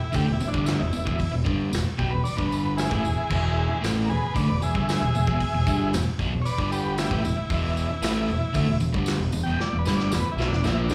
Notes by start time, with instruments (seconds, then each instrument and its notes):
Already playing: transistor combo organ E4
0.00 muted overdriven electric guitar stroke
0.12 picked electric bass D2, overdriven electric guitar D3 A3, transistor combo organ G4, kick, open hi-hat, tambourine
0.27 picked electric bass E1, overdriven electric guitar E2 B2
0.33 transistor combo organ E4
0.40 picked electric bass E1, overdriven electric guitar E2 B2, tambourine
0.48 transistor combo organ D4
0.52 picked electric bass G1, overdriven electric guitar G2 D3 G3, kick
0.66 transistor combo organ E4, snare, open hi-hat, tambourine
0.79 picked electric bass E1, overdriven electric guitar E2 B2, transistor combo organ D#4
0.84 transistor combo organ E4
0.93 picked electric bass E1, overdriven electric guitar E2 B2, tambourine
1.05 picked electric bass E1, overdriven electric guitar E2 B2, kick
1.19 muted overdriven electric guitar stroke, kick, open hi-hat, tambourine
1.32 picked electric bass E1, overdriven electric guitar E2 B2
1.44 picked electric bass G1, overdriven electric guitar G2 D3 G3, kick
1.71 picked electric bass E1, overdriven electric guitar E2 B2, snare, open hi-hat, tambourine
1.85 muted overdriven electric guitar stroke, muted picked electric bass stroke
1.98 picked electric bass B1, overdriven electric guitar B2 F#3, transistor combo organ G4, kick
2.10 picked electric bass E1, overdriven electric guitar E2 B2, transistor combo organ B4
2.24 transistor combo organ D5, muted overdriven electric guitar stroke, muted picked electric bass stroke, open hi-hat, tambourine
2.36 picked electric bass G1, overdriven electric guitar G2 D3 G3, transistor combo organ B4, kick
2.52 tambourine
2.77 transistor combo organ E4 G#4, snare, open hi-hat, tambourine
2.90 picked electric bass A1, overdriven electric guitar A2 E3, kick
3.04 picked electric bass E1, overdriven electric guitar E2 B2, tambourine
3.18 muted overdriven electric guitar stroke, muted picked electric bass stroke
3.30 picked electric bass E1, overdriven electric guitar E2 B2 E3, kick, crash, tambourine
3.70 muted overdriven electric guitar stroke
3.81 picked electric bass A1, overdriven electric guitar A2 E3 A3, snare, open hi-hat, tambourine
4.05 picked electric bass E1, overdriven electric guitar E2 B2, transistor combo organ G#4 A#4
4.10 transistor combo organ B4, tambourine
4.21 muted overdriven electric guitar stroke, muted picked electric bass stroke
4.34 picked electric bass D2, overdriven electric guitar D3 A3, transistor combo organ B4 D5, kick, open hi-hat, tambourine
4.48 picked electric bass E1, overdriven electric guitar E2 B2
4.61 picked electric bass E1, overdriven electric guitar E2 B2, transistor combo organ G#4 E5, tambourine
4.74 picked electric bass G1, overdriven electric guitar G2 D3 G3, kick
4.88 transistor combo organ G#4 E5, snare, open hi-hat, tambourine
5.01 picked electric bass E1, overdriven electric guitar E2 B2
5.14 picked electric bass E1, overdriven electric guitar E2 B2, tambourine
5.27 picked electric bass E1, overdriven electric guitar E2 B2, kick
5.41 muted picked electric bass stroke, muted overdriven electric guitar stroke, kick, open hi-hat, tambourine
5.53 picked electric bass E1, overdriven electric guitar E2 B2
5.67 picked electric bass G1, overdriven electric guitar G2 D3 G3, kick, tambourine
5.93 picked electric bass E1, overdriven electric guitar E2 B2, snare, open hi-hat, tambourine
6.06 muted picked electric bass stroke, muted overdriven electric guitar stroke
6.19 picked electric bass B1, overdriven electric guitar B2 F#3, kick, tambourine
6.32 picked electric bass E1, overdriven electric guitar E2 B2
6.42 transistor combo organ C#5 D5, open hi-hat
6.46 transistor combo organ B4, muted overdriven electric guitar stroke, tambourine
6.58 picked electric bass G1, overdriven electric guitar G2 D3 G3, kick
6.72 transistor combo organ G4 B4, tambourine
6.97 transistor combo organ E4 G4, snare, open hi-hat, tambourine
7.11 picked electric bass A1, overdriven electric guitar A2 E3, kick
7.23 picked electric bass E1, overdriven electric guitar E2 B2, transistor combo organ E4, tambourine
7.36 muted picked electric bass stroke, muted overdriven electric guitar stroke
7.50 picked electric bass E1, overdriven electric guitar E2 B2 E3, kick, open hi-hat, tambourine
7.77 tambourine
7.88 muted picked electric bass stroke, muted overdriven electric guitar stroke
8.02 picked electric bass A1, overdriven electric guitar A2 E3 A3, snare, open hi-hat, tambourine
8.28 picked electric bass E1, overdriven electric guitar E2 B2, tambourine
8.41 muted picked electric bass stroke, muted overdriven electric guitar stroke
8.53 picked electric bass D2, overdriven electric guitar D3 A3, kick, open hi-hat, tambourine
8.66 picked electric bass E1, overdriven electric guitar E2 B2
8.80 picked electric bass E1, overdriven electric guitar E2 B2, tambourine
8.93 picked electric bass G1, overdriven electric guitar G2 D3 G3, kick
9.06 snare, open hi-hat, tambourine
9.19 picked electric bass E1, overdriven electric guitar E2 B2
9.32 picked electric bass E1, overdriven electric guitar E2 B2, tambourine
9.43 picked electric bass E1, overdriven electric guitar E2 B2, transistor combo organ G5
9.59 transistor combo organ D5, muted picked electric bass stroke, muted overdriven electric guitar stroke, snare
9.72 picked electric bass E1, overdriven electric guitar E2 B2
9.79 transistor combo organ B4
9.85 picked electric bass G1, overdriven electric guitar G2 D3 G3, snare, tambourine
9.96 transistor combo organ D5, snare
10.12 picked electric bass E1, overdriven electric guitar E2 B2, transistor combo organ B4, snare, tambourine
10.24 muted overdriven electric guitar stroke, muted picked electric bass stroke
10.32 transistor combo organ E4
10.36 picked electric bass B1, overdriven electric guitar B2 F#3, snare, tambourine
10.48 picked electric bass E1, transistor combo organ D4
10.52 overdriven electric guitar E2 B2, snare
10.64 picked electric bass A#1, overdriven electric guitar A#2 F3 A#3, transistor combo organ E4, snare, tambourine
10.84 transistor combo organ D4
10.89 picked electric bass D2, overdriven electric guitar D3 A3, snare, tambourine